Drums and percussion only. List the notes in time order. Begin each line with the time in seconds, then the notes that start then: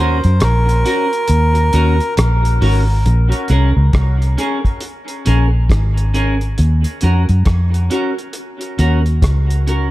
0.24 closed hi-hat
0.40 cross-stick, closed hi-hat
0.69 closed hi-hat
0.86 closed hi-hat
1.13 closed hi-hat
1.28 closed hi-hat
1.55 closed hi-hat
1.73 closed hi-hat
2.00 closed hi-hat
2.17 cross-stick, closed hi-hat
2.45 closed hi-hat
2.62 open hi-hat
3.06 closed hi-hat
3.32 closed hi-hat
3.48 closed hi-hat
3.93 kick, cross-stick, closed hi-hat
4.22 closed hi-hat
4.38 closed hi-hat
4.65 kick, closed hi-hat
4.80 closed hi-hat
5.08 closed hi-hat
5.26 closed hi-hat
5.70 kick, cross-stick, closed hi-hat
5.97 closed hi-hat
6.14 closed hi-hat
6.41 closed hi-hat
6.58 closed hi-hat
6.84 closed hi-hat
7.01 closed hi-hat
7.29 closed hi-hat
7.45 kick, cross-stick, closed hi-hat
7.74 closed hi-hat
7.91 closed hi-hat
8.19 closed hi-hat
8.33 closed hi-hat
8.61 closed hi-hat
8.79 closed hi-hat
9.06 closed hi-hat
9.22 kick, cross-stick, closed hi-hat
9.50 closed hi-hat
9.68 closed hi-hat